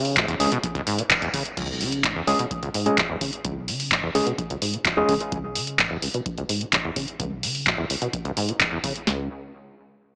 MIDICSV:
0, 0, Header, 1, 5, 480
1, 0, Start_track
1, 0, Key_signature, 4, "minor"
1, 0, Tempo, 468750
1, 1610, Time_signature, 4, 2, 24, 8
1, 10396, End_track
2, 0, Start_track
2, 0, Title_t, "Tine electric piano"
2, 0, Program_c, 0, 4
2, 410, Note_on_c, 0, 56, 82
2, 410, Note_on_c, 0, 61, 73
2, 410, Note_on_c, 0, 68, 87
2, 510, Note_off_c, 0, 56, 0
2, 510, Note_off_c, 0, 61, 0
2, 510, Note_off_c, 0, 68, 0
2, 2329, Note_on_c, 0, 61, 87
2, 2330, Note_on_c, 0, 56, 95
2, 2330, Note_on_c, 0, 68, 101
2, 2430, Note_off_c, 0, 56, 0
2, 2430, Note_off_c, 0, 61, 0
2, 2430, Note_off_c, 0, 68, 0
2, 2929, Note_on_c, 0, 56, 84
2, 2929, Note_on_c, 0, 61, 77
2, 2929, Note_on_c, 0, 68, 88
2, 3029, Note_off_c, 0, 56, 0
2, 3030, Note_off_c, 0, 61, 0
2, 3030, Note_off_c, 0, 68, 0
2, 4250, Note_on_c, 0, 56, 73
2, 4250, Note_on_c, 0, 61, 70
2, 4250, Note_on_c, 0, 68, 88
2, 4350, Note_off_c, 0, 56, 0
2, 4350, Note_off_c, 0, 61, 0
2, 4350, Note_off_c, 0, 68, 0
2, 5090, Note_on_c, 0, 56, 91
2, 5090, Note_on_c, 0, 61, 87
2, 5090, Note_on_c, 0, 68, 102
2, 5250, Note_off_c, 0, 56, 0
2, 5250, Note_off_c, 0, 61, 0
2, 5250, Note_off_c, 0, 68, 0
2, 10396, End_track
3, 0, Start_track
3, 0, Title_t, "Acid bass"
3, 0, Program_c, 1, 38
3, 0, Note_on_c, 1, 49, 75
3, 169, Note_on_c, 1, 44, 109
3, 185, Note_off_c, 1, 49, 0
3, 268, Note_off_c, 1, 44, 0
3, 289, Note_on_c, 1, 40, 103
3, 355, Note_off_c, 1, 40, 0
3, 409, Note_on_c, 1, 37, 83
3, 476, Note_off_c, 1, 37, 0
3, 530, Note_on_c, 1, 47, 82
3, 596, Note_off_c, 1, 47, 0
3, 648, Note_on_c, 1, 35, 86
3, 688, Note_off_c, 1, 35, 0
3, 768, Note_on_c, 1, 37, 111
3, 835, Note_off_c, 1, 37, 0
3, 889, Note_on_c, 1, 44, 77
3, 1009, Note_on_c, 1, 47, 79
3, 1024, Note_off_c, 1, 44, 0
3, 1049, Note_off_c, 1, 47, 0
3, 1130, Note_on_c, 1, 37, 106
3, 1169, Note_off_c, 1, 37, 0
3, 1249, Note_on_c, 1, 40, 100
3, 1315, Note_off_c, 1, 40, 0
3, 1371, Note_on_c, 1, 49, 76
3, 1469, Note_off_c, 1, 49, 0
3, 1609, Note_on_c, 1, 37, 105
3, 1730, Note_on_c, 1, 35, 79
3, 1745, Note_off_c, 1, 37, 0
3, 1849, Note_on_c, 1, 49, 77
3, 1865, Note_off_c, 1, 35, 0
3, 2089, Note_on_c, 1, 44, 108
3, 2104, Note_off_c, 1, 49, 0
3, 2188, Note_off_c, 1, 44, 0
3, 2211, Note_on_c, 1, 40, 100
3, 2276, Note_off_c, 1, 40, 0
3, 2330, Note_on_c, 1, 37, 81
3, 2396, Note_off_c, 1, 37, 0
3, 2450, Note_on_c, 1, 47, 76
3, 2516, Note_off_c, 1, 47, 0
3, 2570, Note_on_c, 1, 35, 86
3, 2609, Note_off_c, 1, 35, 0
3, 2689, Note_on_c, 1, 37, 104
3, 2755, Note_off_c, 1, 37, 0
3, 2809, Note_on_c, 1, 44, 78
3, 2930, Note_on_c, 1, 47, 75
3, 2946, Note_off_c, 1, 44, 0
3, 2969, Note_off_c, 1, 47, 0
3, 3050, Note_on_c, 1, 37, 99
3, 3090, Note_off_c, 1, 37, 0
3, 3171, Note_on_c, 1, 40, 101
3, 3236, Note_off_c, 1, 40, 0
3, 3289, Note_on_c, 1, 49, 76
3, 3388, Note_off_c, 1, 49, 0
3, 3529, Note_on_c, 1, 37, 101
3, 3650, Note_on_c, 1, 35, 76
3, 3665, Note_off_c, 1, 37, 0
3, 3769, Note_on_c, 1, 49, 74
3, 3784, Note_off_c, 1, 35, 0
3, 4009, Note_on_c, 1, 44, 105
3, 4025, Note_off_c, 1, 49, 0
3, 4109, Note_off_c, 1, 44, 0
3, 4129, Note_on_c, 1, 40, 105
3, 4195, Note_off_c, 1, 40, 0
3, 4248, Note_on_c, 1, 37, 80
3, 4315, Note_off_c, 1, 37, 0
3, 4369, Note_on_c, 1, 47, 81
3, 4435, Note_off_c, 1, 47, 0
3, 4489, Note_on_c, 1, 35, 80
3, 4529, Note_off_c, 1, 35, 0
3, 4609, Note_on_c, 1, 37, 102
3, 4675, Note_off_c, 1, 37, 0
3, 4729, Note_on_c, 1, 44, 78
3, 4849, Note_on_c, 1, 47, 74
3, 4864, Note_off_c, 1, 44, 0
3, 4889, Note_off_c, 1, 47, 0
3, 4969, Note_on_c, 1, 37, 100
3, 5009, Note_off_c, 1, 37, 0
3, 5090, Note_on_c, 1, 40, 105
3, 5156, Note_off_c, 1, 40, 0
3, 5209, Note_on_c, 1, 49, 78
3, 5308, Note_off_c, 1, 49, 0
3, 5449, Note_on_c, 1, 37, 108
3, 5568, Note_on_c, 1, 35, 76
3, 5583, Note_off_c, 1, 37, 0
3, 5689, Note_on_c, 1, 49, 77
3, 5704, Note_off_c, 1, 35, 0
3, 5929, Note_on_c, 1, 44, 104
3, 5944, Note_off_c, 1, 49, 0
3, 6028, Note_off_c, 1, 44, 0
3, 6049, Note_on_c, 1, 40, 98
3, 6116, Note_off_c, 1, 40, 0
3, 6169, Note_on_c, 1, 37, 76
3, 6235, Note_off_c, 1, 37, 0
3, 6291, Note_on_c, 1, 47, 75
3, 6356, Note_off_c, 1, 47, 0
3, 6410, Note_on_c, 1, 35, 83
3, 6449, Note_off_c, 1, 35, 0
3, 6529, Note_on_c, 1, 37, 103
3, 6595, Note_off_c, 1, 37, 0
3, 6648, Note_on_c, 1, 44, 78
3, 6769, Note_on_c, 1, 47, 75
3, 6785, Note_off_c, 1, 44, 0
3, 6809, Note_off_c, 1, 47, 0
3, 6889, Note_on_c, 1, 37, 101
3, 6929, Note_off_c, 1, 37, 0
3, 7010, Note_on_c, 1, 40, 102
3, 7076, Note_off_c, 1, 40, 0
3, 7130, Note_on_c, 1, 49, 78
3, 7229, Note_off_c, 1, 49, 0
3, 7370, Note_on_c, 1, 37, 107
3, 7490, Note_on_c, 1, 35, 80
3, 7506, Note_off_c, 1, 37, 0
3, 7610, Note_on_c, 1, 49, 75
3, 7626, Note_off_c, 1, 35, 0
3, 7849, Note_on_c, 1, 44, 105
3, 7864, Note_off_c, 1, 49, 0
3, 7948, Note_off_c, 1, 44, 0
3, 7969, Note_on_c, 1, 40, 104
3, 8035, Note_off_c, 1, 40, 0
3, 8089, Note_on_c, 1, 37, 78
3, 8155, Note_off_c, 1, 37, 0
3, 8210, Note_on_c, 1, 47, 78
3, 8275, Note_off_c, 1, 47, 0
3, 8328, Note_on_c, 1, 35, 83
3, 8369, Note_off_c, 1, 35, 0
3, 8449, Note_on_c, 1, 37, 104
3, 8515, Note_off_c, 1, 37, 0
3, 8569, Note_on_c, 1, 44, 77
3, 8689, Note_on_c, 1, 47, 79
3, 8705, Note_off_c, 1, 44, 0
3, 8729, Note_off_c, 1, 47, 0
3, 8809, Note_on_c, 1, 37, 108
3, 8849, Note_off_c, 1, 37, 0
3, 8929, Note_on_c, 1, 40, 101
3, 8995, Note_off_c, 1, 40, 0
3, 9049, Note_on_c, 1, 49, 75
3, 9148, Note_off_c, 1, 49, 0
3, 9289, Note_on_c, 1, 37, 94
3, 9513, Note_off_c, 1, 37, 0
3, 10396, End_track
4, 0, Start_track
4, 0, Title_t, "Sub drop"
4, 0, Program_c, 2, 103
4, 1610, Note_on_c, 2, 60, 77
4, 3530, Note_off_c, 2, 60, 0
4, 10396, End_track
5, 0, Start_track
5, 0, Title_t, "Drums"
5, 51, Note_on_c, 9, 46, 57
5, 153, Note_off_c, 9, 46, 0
5, 170, Note_on_c, 9, 36, 121
5, 170, Note_on_c, 9, 42, 91
5, 174, Note_on_c, 9, 39, 125
5, 272, Note_off_c, 9, 36, 0
5, 273, Note_off_c, 9, 42, 0
5, 277, Note_off_c, 9, 39, 0
5, 291, Note_on_c, 9, 42, 40
5, 393, Note_off_c, 9, 42, 0
5, 410, Note_on_c, 9, 46, 102
5, 512, Note_off_c, 9, 46, 0
5, 530, Note_on_c, 9, 42, 55
5, 633, Note_off_c, 9, 42, 0
5, 650, Note_on_c, 9, 36, 125
5, 650, Note_on_c, 9, 42, 86
5, 752, Note_off_c, 9, 36, 0
5, 753, Note_off_c, 9, 42, 0
5, 770, Note_on_c, 9, 36, 60
5, 770, Note_on_c, 9, 42, 41
5, 872, Note_off_c, 9, 36, 0
5, 872, Note_off_c, 9, 42, 0
5, 889, Note_on_c, 9, 46, 103
5, 991, Note_off_c, 9, 46, 0
5, 1009, Note_on_c, 9, 42, 60
5, 1112, Note_off_c, 9, 42, 0
5, 1129, Note_on_c, 9, 36, 122
5, 1130, Note_on_c, 9, 42, 86
5, 1134, Note_on_c, 9, 39, 127
5, 1232, Note_off_c, 9, 36, 0
5, 1232, Note_off_c, 9, 42, 0
5, 1236, Note_off_c, 9, 39, 0
5, 1250, Note_on_c, 9, 42, 39
5, 1353, Note_off_c, 9, 42, 0
5, 1369, Note_on_c, 9, 36, 82
5, 1369, Note_on_c, 9, 46, 101
5, 1472, Note_off_c, 9, 36, 0
5, 1472, Note_off_c, 9, 46, 0
5, 1490, Note_on_c, 9, 42, 54
5, 1592, Note_off_c, 9, 42, 0
5, 1610, Note_on_c, 9, 36, 120
5, 1610, Note_on_c, 9, 42, 73
5, 1610, Note_on_c, 9, 49, 92
5, 1712, Note_off_c, 9, 36, 0
5, 1712, Note_off_c, 9, 42, 0
5, 1712, Note_off_c, 9, 49, 0
5, 1850, Note_on_c, 9, 46, 102
5, 1952, Note_off_c, 9, 46, 0
5, 1970, Note_on_c, 9, 42, 51
5, 2072, Note_off_c, 9, 42, 0
5, 2089, Note_on_c, 9, 36, 127
5, 2089, Note_on_c, 9, 42, 85
5, 2093, Note_on_c, 9, 39, 124
5, 2191, Note_off_c, 9, 42, 0
5, 2192, Note_off_c, 9, 36, 0
5, 2196, Note_off_c, 9, 39, 0
5, 2329, Note_on_c, 9, 46, 100
5, 2432, Note_off_c, 9, 46, 0
5, 2450, Note_on_c, 9, 42, 52
5, 2552, Note_off_c, 9, 42, 0
5, 2569, Note_on_c, 9, 36, 126
5, 2570, Note_on_c, 9, 42, 80
5, 2671, Note_off_c, 9, 36, 0
5, 2673, Note_off_c, 9, 42, 0
5, 2690, Note_on_c, 9, 42, 38
5, 2792, Note_off_c, 9, 42, 0
5, 2810, Note_on_c, 9, 46, 108
5, 2912, Note_off_c, 9, 46, 0
5, 2929, Note_on_c, 9, 42, 59
5, 3032, Note_off_c, 9, 42, 0
5, 3049, Note_on_c, 9, 36, 119
5, 3050, Note_on_c, 9, 42, 82
5, 3054, Note_on_c, 9, 39, 122
5, 3151, Note_off_c, 9, 36, 0
5, 3152, Note_off_c, 9, 42, 0
5, 3156, Note_off_c, 9, 39, 0
5, 3289, Note_on_c, 9, 36, 82
5, 3289, Note_on_c, 9, 46, 102
5, 3391, Note_off_c, 9, 36, 0
5, 3391, Note_off_c, 9, 46, 0
5, 3409, Note_on_c, 9, 42, 55
5, 3511, Note_off_c, 9, 42, 0
5, 3529, Note_on_c, 9, 36, 122
5, 3529, Note_on_c, 9, 42, 74
5, 3631, Note_off_c, 9, 36, 0
5, 3631, Note_off_c, 9, 42, 0
5, 3769, Note_on_c, 9, 46, 107
5, 3871, Note_off_c, 9, 46, 0
5, 3889, Note_on_c, 9, 46, 59
5, 3992, Note_off_c, 9, 46, 0
5, 4009, Note_on_c, 9, 36, 127
5, 4010, Note_on_c, 9, 42, 78
5, 4014, Note_on_c, 9, 39, 127
5, 4111, Note_off_c, 9, 36, 0
5, 4112, Note_off_c, 9, 42, 0
5, 4116, Note_off_c, 9, 39, 0
5, 4250, Note_on_c, 9, 46, 107
5, 4352, Note_off_c, 9, 46, 0
5, 4370, Note_on_c, 9, 42, 53
5, 4472, Note_off_c, 9, 42, 0
5, 4489, Note_on_c, 9, 36, 127
5, 4490, Note_on_c, 9, 42, 80
5, 4591, Note_off_c, 9, 36, 0
5, 4593, Note_off_c, 9, 42, 0
5, 4610, Note_on_c, 9, 42, 37
5, 4713, Note_off_c, 9, 42, 0
5, 4729, Note_on_c, 9, 46, 108
5, 4832, Note_off_c, 9, 46, 0
5, 4850, Note_on_c, 9, 42, 54
5, 4952, Note_off_c, 9, 42, 0
5, 4969, Note_on_c, 9, 36, 121
5, 4970, Note_on_c, 9, 42, 79
5, 4974, Note_on_c, 9, 39, 123
5, 5072, Note_off_c, 9, 36, 0
5, 5072, Note_off_c, 9, 42, 0
5, 5076, Note_off_c, 9, 39, 0
5, 5209, Note_on_c, 9, 36, 87
5, 5209, Note_on_c, 9, 46, 103
5, 5312, Note_off_c, 9, 36, 0
5, 5312, Note_off_c, 9, 46, 0
5, 5329, Note_on_c, 9, 42, 50
5, 5432, Note_off_c, 9, 42, 0
5, 5449, Note_on_c, 9, 36, 125
5, 5449, Note_on_c, 9, 42, 72
5, 5551, Note_off_c, 9, 42, 0
5, 5552, Note_off_c, 9, 36, 0
5, 5688, Note_on_c, 9, 46, 115
5, 5791, Note_off_c, 9, 46, 0
5, 5809, Note_on_c, 9, 42, 49
5, 5911, Note_off_c, 9, 42, 0
5, 5928, Note_on_c, 9, 42, 77
5, 5929, Note_on_c, 9, 36, 127
5, 5933, Note_on_c, 9, 39, 123
5, 6031, Note_off_c, 9, 42, 0
5, 6032, Note_off_c, 9, 36, 0
5, 6035, Note_off_c, 9, 39, 0
5, 6168, Note_on_c, 9, 46, 111
5, 6271, Note_off_c, 9, 46, 0
5, 6290, Note_on_c, 9, 42, 51
5, 6392, Note_off_c, 9, 42, 0
5, 6409, Note_on_c, 9, 36, 127
5, 6409, Note_on_c, 9, 42, 79
5, 6511, Note_off_c, 9, 42, 0
5, 6512, Note_off_c, 9, 36, 0
5, 6529, Note_on_c, 9, 42, 37
5, 6631, Note_off_c, 9, 42, 0
5, 6649, Note_on_c, 9, 46, 113
5, 6751, Note_off_c, 9, 46, 0
5, 6769, Note_on_c, 9, 42, 54
5, 6871, Note_off_c, 9, 42, 0
5, 6889, Note_on_c, 9, 36, 124
5, 6889, Note_on_c, 9, 42, 76
5, 6893, Note_on_c, 9, 39, 116
5, 6991, Note_off_c, 9, 42, 0
5, 6992, Note_off_c, 9, 36, 0
5, 6995, Note_off_c, 9, 39, 0
5, 7129, Note_on_c, 9, 36, 84
5, 7129, Note_on_c, 9, 46, 116
5, 7232, Note_off_c, 9, 36, 0
5, 7232, Note_off_c, 9, 46, 0
5, 7250, Note_on_c, 9, 42, 48
5, 7352, Note_off_c, 9, 42, 0
5, 7369, Note_on_c, 9, 36, 122
5, 7370, Note_on_c, 9, 42, 71
5, 7472, Note_off_c, 9, 36, 0
5, 7472, Note_off_c, 9, 42, 0
5, 7610, Note_on_c, 9, 46, 109
5, 7713, Note_off_c, 9, 46, 0
5, 7730, Note_on_c, 9, 46, 60
5, 7832, Note_off_c, 9, 46, 0
5, 7849, Note_on_c, 9, 36, 127
5, 7850, Note_on_c, 9, 42, 77
5, 7854, Note_on_c, 9, 39, 117
5, 7952, Note_off_c, 9, 36, 0
5, 7953, Note_off_c, 9, 42, 0
5, 7957, Note_off_c, 9, 39, 0
5, 8090, Note_on_c, 9, 46, 107
5, 8192, Note_off_c, 9, 46, 0
5, 8210, Note_on_c, 9, 42, 50
5, 8312, Note_off_c, 9, 42, 0
5, 8329, Note_on_c, 9, 36, 127
5, 8329, Note_on_c, 9, 42, 76
5, 8432, Note_off_c, 9, 36, 0
5, 8432, Note_off_c, 9, 42, 0
5, 8450, Note_on_c, 9, 42, 37
5, 8552, Note_off_c, 9, 42, 0
5, 8569, Note_on_c, 9, 46, 107
5, 8672, Note_off_c, 9, 46, 0
5, 8690, Note_on_c, 9, 42, 52
5, 8792, Note_off_c, 9, 42, 0
5, 8809, Note_on_c, 9, 42, 73
5, 8810, Note_on_c, 9, 36, 126
5, 8813, Note_on_c, 9, 39, 118
5, 8912, Note_off_c, 9, 36, 0
5, 8912, Note_off_c, 9, 42, 0
5, 8916, Note_off_c, 9, 39, 0
5, 9050, Note_on_c, 9, 36, 90
5, 9050, Note_on_c, 9, 46, 113
5, 9152, Note_off_c, 9, 36, 0
5, 9152, Note_off_c, 9, 46, 0
5, 9170, Note_on_c, 9, 42, 48
5, 9273, Note_off_c, 9, 42, 0
5, 9289, Note_on_c, 9, 38, 109
5, 9289, Note_on_c, 9, 43, 106
5, 9392, Note_off_c, 9, 38, 0
5, 9392, Note_off_c, 9, 43, 0
5, 10396, End_track
0, 0, End_of_file